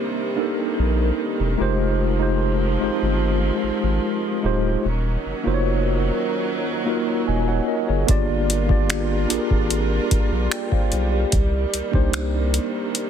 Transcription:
Already playing: C3 D#3 G3 A#3 D4 D#4 G4 C5
0.36 A#3 D4 D#4 G4
0.40 A4
0.79 A#1
1.40 E1
1.58 F1 F3 G#3 C4 D#4 F4 G4 C5
2.19 G#3 D#4 F4 G4 C5
2.80 G1 G#3 D#4 F4 G4 C5
3.02 G1
3.63 G#1
3.83 G#1
4.42 D1 G#3 D#4 F4 G4 C5
4.84 D#1 D#3 F#3 A#3 C#4
5.26 F1
5.44 F1 A#3 D#4 F4 F#4 C5
5.54 C#5
6.85 A#3 D#4 F4 F#4 A#4
7.28 D#1 D#5 G#5
7.48 C#5 F#5
7.68 A#4 D#5
7.88 F#1 G#4 C#5
8.07 G1 G3 A#3 D4 F4 G4 A#4, kick, closed hi-hat
8.11 D5
8.50 closed hi-hat
8.68 A#3 D4 F4 G4 D5, kick
8.90 finger snap, closed hi-hat
9.28 G#1 A#3 D4 F4 G4, closed hi-hat
9.32 G#4
9.38 A#4
9.50 G#1, kick
9.70 closed hi-hat
10.11 A#1, kick, closed hi-hat
10.32 A#1
10.52 G5, finger snap, closed hi-hat
10.72 C5 F5, kick
10.92 B1, closed hi-hat
11.12 G4 D5
11.32 C2 C3 D#3 A#3, kick, closed hi-hat
11.74 C2, closed hi-hat
11.91 C2 A#3 D4 D#4 G4 C5, kick
12.13 finger snap, closed hi-hat
12.54 closed hi-hat
12.95 closed hi-hat

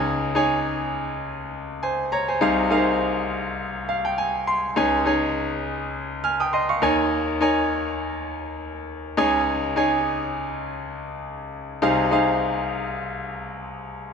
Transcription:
Already playing: C#2 C#3 D#4 G#4 C#5 G#5
0.35 D#4 G#4 C#5 G#5
1.83 C5 G#5
2.12 C#5 A#5
2.28 C5 G#5
2.41 C2 C3 D#4 G#4 C5 F5
2.70 D#4 G#4 A#4 F5
2.78 C5
3.89 F5
4.05 G5
4.18 G#5
4.47 C6
4.76 C#2 C#3 D#4 G#4 C#5 G#5
5.06 D#4 G#4 C#5 G#5
6.24 G#5 F6
6.40 G5 D#6
6.53 D#5 C6
6.69 F5 C#6
6.82 D#2 D#3 D#4 A#4 C#5 G#5
7.41 D#4 A#4 C#5 G#5
9.17 C#2 C#3 D#4 G#4 C#5 G#5
9.76 D#4 G#4 C#5 G#5
11.82 C2 C3 D#4 G#4 C5 F5
12.11 D#4 G#4 C5 F5

